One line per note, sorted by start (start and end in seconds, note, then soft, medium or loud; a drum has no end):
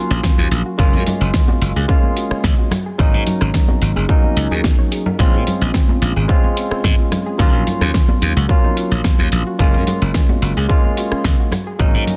0.00 0.75 F#3 medium
0.00 0.75 A#3 medium
0.00 0.76 C#4 medium
0.00 0.76 F4 medium
0.11 0.20 A#1 medium
0.11 0.17 C#4 medium
0.24 0.31 C#4 medium
0.24 kick loud
0.24 snare loud
0.24 open hi-hat medium
0.24 high conga medium
0.38 0.47 D#2 loud
0.38 0.48 F4 medium
0.51 0.61 A#1 medium
0.51 0.62 F4 medium
0.51 open hi-hat loud
0.66 0.76 F#4 medium
0.78 0.95 F#1 loud
0.78 1.85 G#3 medium
0.78 1.86 A#3 medium
0.78 0.86 C#4 medium
0.78 1.86 C#4 medium
0.78 1.86 F4 medium
0.78 kick loud
0.93 1.02 F#2 loud
0.93 1.03 F4 medium
1.06 1.14 F#4 medium
1.06 open hi-hat loud
1.06 low conga medium
1.21 1.30 F#1 loud
1.21 1.27 C#4 medium
1.34 1.41 C#4 medium
1.34 kick loud
1.34 snare loud
1.48 1.58 F#4 medium
1.48 high conga loud
1.61 1.71 F#1 medium
1.61 1.72 F#4 medium
1.61 open hi-hat loud
1.76 1.85 C#2 medium
1.76 1.86 G#4 medium
1.88 2.69 G#3 medium
1.88 2.70 A#3 medium
1.88 1.96 C#4 medium
1.88 2.70 C#4 medium
1.88 2.70 F4 medium
1.88 kick loud
2.03 2.13 F4 medium
2.03 high conga medium
2.17 2.24 F#4 medium
2.17 open hi-hat loud
2.31 2.38 C#4 medium
2.31 muted slap bass stroke soft
2.31 cross-stick medium
2.44 2.54 C#2 medium
2.44 2.51 C#4 medium
2.44 kick loud
2.44 snare loud
2.44 high conga medium
2.58 2.68 F#4 medium
2.71 2.83 F#4 medium
2.71 cross-stick medium
2.71 open hi-hat loud
2.71 low conga medium
2.86 2.96 G#4 medium
2.98 3.15 G#1 loud
2.98 4.05 F#3 medium
2.98 4.06 A#3 medium
2.98 3.06 C#4 medium
2.98 4.06 C#4 medium
2.98 4.07 D#4 medium
2.98 kick loud
3.13 3.23 G#2 loud
3.13 3.23 D#4 medium
3.26 3.34 F#4 medium
3.26 open hi-hat loud
3.26 low conga medium
3.41 3.50 G#1 loud
3.41 3.48 C#4 medium
3.41 cross-stick medium
3.54 3.61 C#4 medium
3.54 kick loud
3.54 snare loud
3.68 3.79 F#4 medium
3.68 high conga loud
3.82 3.92 G#1 medium
3.82 3.93 F#4 medium
3.82 open hi-hat loud
3.96 4.05 F#1 medium
3.96 4.06 G#4 medium
4.08 5.16 F#3 medium
4.08 5.16 A#3 medium
4.08 4.17 C#4 medium
4.08 5.16 C#4 medium
4.08 5.17 D#4 medium
4.08 kick loud
4.23 4.34 D#4 medium
4.23 high conga medium
4.37 4.47 C#2 medium
4.37 4.44 D#4 medium
4.37 open hi-hat loud
4.51 4.60 D#2 medium
4.51 4.55 G#4 loud
4.64 4.72 F#4 medium
4.64 kick loud
4.64 snare loud
4.64 open hi-hat medium
4.64 high conga medium
4.79 4.83 C#5 medium
4.92 4.99 G#4 medium
4.92 open hi-hat loud
5.06 5.10 A#4 medium
5.06 low conga medium
5.18 5.35 A#1 loud
5.18 6.26 G#3 medium
5.18 5.27 C4 medium
5.18 6.26 C4 medium
5.18 6.26 C#4 medium
5.18 6.27 F4 medium
5.18 kick loud
5.33 5.43 A#2 loud
5.33 5.44 C#4 medium
5.47 5.54 F4 medium
5.47 open hi-hat loud
5.47 low conga medium
5.61 5.70 A#1 loud
5.61 5.68 C4 medium
5.74 5.82 C4 medium
5.74 kick loud
5.74 snare loud
5.89 5.99 F4 medium
5.89 high conga loud
6.02 6.12 A#1 medium
6.02 6.13 F4 medium
6.02 open hi-hat loud
6.16 6.25 G#1 medium
6.16 6.26 G#4 medium
6.28 7.36 G#3 medium
6.28 7.36 C4 medium
6.28 6.37 C4 medium
6.28 7.36 C#4 medium
6.28 7.37 F4 medium
6.28 kick loud
6.44 6.54 C#4 medium
6.44 high conga medium
6.57 6.64 F4 medium
6.57 open hi-hat loud
6.71 6.78 C4 medium
6.71 muted slap bass stroke soft
6.71 cross-stick medium
6.84 6.94 G#2 medium
6.84 6.92 C4 medium
6.84 kick loud
6.84 snare loud
6.84 high conga medium
6.99 7.09 F4 medium
7.12 7.23 F4 medium
7.12 cross-stick medium
7.12 open hi-hat loud
7.12 low conga medium
7.26 7.36 G#4 medium
7.38 7.53 D#2 loud
7.38 8.46 F#3 medium
7.38 8.46 A#3 medium
7.38 7.47 C#4 medium
7.38 8.46 C#4 medium
7.38 8.47 F4 medium
7.38 kick loud
7.53 7.63 A#1 loud
7.53 7.64 D#4 medium
7.67 7.74 F4 medium
7.67 open hi-hat loud
7.67 low conga medium
7.81 7.90 D#2 loud
7.81 7.88 C#4 medium
7.81 cross-stick medium
7.94 8.02 C#4 medium
7.94 kick loud
7.94 snare loud
8.08 8.19 F4 medium
8.08 high conga loud
8.22 8.32 D#2 medium
8.22 8.33 F4 medium
8.22 open hi-hat loud
8.36 8.45 C#2 medium
8.36 8.46 F#4 medium
8.48 9.56 F#3 medium
8.48 9.56 A#3 medium
8.48 8.57 C#4 medium
8.48 9.57 C#4 medium
8.48 9.57 F4 medium
8.48 kick loud
8.64 8.74 D#4 medium
8.64 high conga medium
8.77 8.84 F4 medium
8.77 open hi-hat loud
8.91 9.00 A#1 medium
8.91 8.98 C#4 medium
9.04 9.12 C#4 medium
9.04 kick loud
9.04 snare loud
9.04 open hi-hat medium
9.04 high conga medium
9.19 9.28 D#2 loud
9.19 9.29 F4 medium
9.32 9.42 A#1 medium
9.32 9.43 F4 medium
9.32 open hi-hat loud
9.47 9.57 F#4 medium
9.59 9.76 F#1 loud
9.59 10.66 G#3 medium
9.59 10.66 A#3 medium
9.59 9.67 C#4 medium
9.59 10.67 C#4 medium
9.59 10.67 F4 loud
9.59 kick loud
9.74 9.83 F#2 loud
9.74 9.84 F4 medium
9.87 9.95 F#4 medium
9.87 open hi-hat loud
9.87 low conga medium
10.02 10.11 F#1 loud
10.02 10.08 C#4 medium
10.14 10.22 C#4 medium
10.14 kick loud
10.14 snare loud
10.29 10.39 F#4 medium
10.29 high conga medium
10.42 10.52 F#1 medium
10.42 10.53 F#4 medium
10.42 open hi-hat loud
10.57 10.66 C#2 medium
10.57 10.67 G#4 medium
10.69 11.50 G#3 medium
10.69 11.50 A#3 medium
10.69 11.51 C#4 medium
10.69 10.77 C#4 medium
10.69 11.51 F4 medium
10.69 kick loud
10.84 10.94 F4 medium
10.84 high conga medium
10.97 11.05 F#4 medium
10.97 open hi-hat loud
11.12 11.18 C#4 medium
11.12 muted slap bass stroke soft
11.12 cross-stick medium
11.24 11.35 C#2 medium
11.24 11.32 C#4 medium
11.24 kick loud
11.24 snare loud
11.24 high conga medium
11.39 11.49 F#4 medium
11.52 11.63 F#4 medium
11.52 cross-stick medium
11.52 open hi-hat loud
11.52 low conga medium
11.67 11.77 G#4 medium
11.79 11.96 G#1 loud
11.79 12.17 F#3 medium
11.79 12.17 A#3 medium
11.79 11.87 C#4 medium
11.79 12.17 C#4 medium
11.79 12.17 D#4 loud
11.79 kick loud
11.94 12.03 G#2 loud
11.94 12.04 D#4 medium
12.07 12.15 F#4 medium
12.07 open hi-hat loud
12.07 low conga medium